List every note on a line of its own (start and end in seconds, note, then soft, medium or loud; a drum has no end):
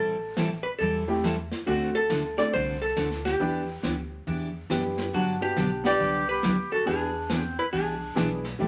0.00 0.63 A1 medium
0.00 0.15 E3 medium
0.00 0.15 G3 medium
0.00 0.15 C4 medium
0.00 0.15 E4 medium
0.00 0.16 A4 medium
0.00 0.63 A4 medium
0.37 0.48 E3 medium
0.37 0.48 G3 medium
0.37 0.49 C4 medium
0.37 0.49 E4 medium
0.37 0.49 A4 medium
0.37 snare medium
0.37 hi-hat pedal medium
0.63 0.68 B4 medium
0.79 1.50 E2 medium
0.79 1.02 E3 medium
0.79 1.02 G3 medium
0.79 1.02 C4 medium
0.79 1.02 E4 medium
0.79 1.47 A4 medium
0.79 1.03 A4 medium
0.79 brush sweep soft
1.08 1.22 A3 medium
1.08 1.22 C4 medium
1.08 1.22 E4 medium
1.08 1.22 G4 medium
1.24 1.35 E3 medium
1.24 1.35 G3 medium
1.24 1.35 C4 medium
1.24 1.36 E4 medium
1.24 1.36 A4 medium
1.24 snare medium
1.24 hi-hat pedal soft
1.51 snare soft
1.66 2.36 D2 medium
1.66 1.89 D3 medium
1.66 1.92 A3 medium
1.66 1.89 A3 medium
1.66 1.92 C4 medium
1.66 1.89 C4 medium
1.66 1.92 D4 medium
1.66 1.95 F#4 medium
1.66 1.92 F#4 medium
1.66 1.89 F#4 medium
1.66 1.89 A4 medium
1.66 brush sweep soft
1.95 2.35 A4 medium
2.10 2.22 D3 medium
2.10 2.22 A3 medium
2.10 2.22 C4 medium
2.10 2.22 F#4 medium
2.10 2.22 A4 medium
2.10 snare medium
2.10 hi-hat pedal soft
2.37 2.51 A3 medium
2.37 2.52 C4 medium
2.37 2.52 D4 medium
2.37 2.52 A4 medium
2.37 2.53 D5 loud
2.37 snare soft
2.53 2.90 C2 medium
2.53 2.75 D3 medium
2.53 2.76 A3 medium
2.53 2.76 C4 medium
2.53 2.76 F#4 medium
2.53 2.76 A4 medium
2.53 2.82 C5 loud
2.53 brush sweep soft
2.82 3.25 A4 medium
2.96 3.33 D2 medium
2.96 3.08 D3 medium
2.96 3.08 A3 medium
2.96 3.08 C4 medium
2.96 3.08 F#4 medium
2.96 3.08 A4 medium
2.96 snare medium
2.96 hi-hat pedal medium
3.11 snare soft
3.25 4.66 G4 medium
3.25 snare soft
3.39 3.75 E2 medium
3.39 3.62 E3 medium
3.39 3.65 B3 medium
3.39 3.62 B3 medium
3.39 3.65 D4 medium
3.39 3.62 D4 medium
3.39 3.65 E4 medium
3.39 3.65 G4 medium
3.39 3.62 G4 medium
3.39 brush sweep soft
3.83 4.20 D2 medium
3.83 3.94 E3 medium
3.83 3.95 B3 medium
3.83 3.95 D4 medium
3.83 3.95 G4 medium
3.83 snare medium
3.83 hi-hat pedal soft
4.27 4.64 E2 medium
4.27 4.49 E3 medium
4.27 4.49 B3 medium
4.27 4.49 D4 medium
4.27 4.49 G4 medium
4.27 brush sweep medium
4.70 5.07 F#2 medium
4.70 4.81 E3 medium
4.70 5.13 B3 medium
4.70 4.82 B3 medium
4.70 5.13 D4 medium
4.70 4.82 D4 medium
4.70 5.13 E4 soft
4.70 5.14 G4 medium
4.70 4.82 G4 medium
4.70 snare medium
4.70 hi-hat pedal medium
4.98 snare soft
5.13 5.48 G2 medium
5.13 5.35 D3 soft
5.13 5.35 F#3 medium
5.13 5.35 B3 medium
5.13 5.35 D4 medium
5.13 5.40 D4 medium
5.13 5.42 F#4 medium
5.13 5.36 G4 medium
5.13 brush sweep soft
5.41 5.55 B3 medium
5.41 5.55 D4 soft
5.41 5.82 D4 medium
5.41 5.55 F#4 medium
5.41 5.55 G4 medium
5.41 5.82 G4 medium
5.56 5.93 B1 medium
5.56 5.68 D3 medium
5.56 5.68 F#3 medium
5.56 5.69 B3 medium
5.56 5.69 D4 medium
5.56 5.69 G4 medium
5.56 snare medium
5.56 hi-hat pedal soft
5.84 6.40 B3 medium
5.84 6.40 D4 medium
5.84 6.40 G4 medium
5.84 6.26 G4 medium
5.84 6.29 D5 loud
5.84 6.40 F#5 medium
5.84 snare soft
6.00 6.37 C2 medium
6.00 6.22 D3 medium
6.00 6.22 F#3 medium
6.00 6.22 B3 medium
6.00 6.22 D4 medium
6.00 6.22 G4 medium
6.00 brush sweep soft
6.29 6.69 G4 medium
6.29 6.69 B4 loud
6.43 6.80 D2 medium
6.43 6.55 D3 medium
6.43 6.55 F#3 medium
6.43 6.55 B3 medium
6.43 6.55 D4 medium
6.43 6.55 G4 medium
6.43 snare medium
6.43 hi-hat pedal soft
6.72 6.86 F#4 medium
6.72 6.86 A4 medium
6.86 7.56 E2 medium
6.86 7.09 E3 medium
6.86 7.11 B3 medium
6.86 7.09 B3 medium
6.86 7.11 D4 medium
6.86 7.38 D4 medium
6.86 7.09 D4 medium
6.86 7.11 E4 medium
6.86 7.12 G#4 medium
6.86 7.42 G#4 medium
6.86 7.09 G#4 medium
6.86 brush sweep soft
7.30 7.42 E3 medium
7.30 7.42 B3 medium
7.30 7.42 D4 medium
7.30 7.42 G#4 medium
7.30 snare medium
7.30 hi-hat pedal soft
7.38 7.54 C4 medium
7.38 7.59 F#4 medium
7.59 7.65 E4 medium
7.59 7.64 B4 medium
7.73 8.10 C2 medium
7.73 7.95 E3 medium
7.73 7.95 B3 medium
7.73 8.40 D4 medium
7.73 7.95 D4 medium
7.73 8.40 G#4 medium
7.73 7.96 G#4 medium
7.73 brush sweep soft
8.15 8.53 B1 medium
8.15 8.28 E3 medium
8.15 8.41 B3 medium
8.15 8.28 B3 medium
8.15 8.41 D4 medium
8.15 8.28 D4 medium
8.15 8.41 E4 medium
8.15 8.41 G#4 medium
8.15 8.29 G#4 medium
8.15 snare medium
8.15 hi-hat pedal medium
8.44 snare soft
8.59 8.68 A1 medium
8.59 8.68 E3 medium
8.59 8.68 G3 medium
8.59 8.68 A3 medium
8.59 8.68 C4 medium
8.59 8.68 E4 medium
8.59 8.68 G4 medium
8.59 8.68 A4 medium
8.59 brush sweep soft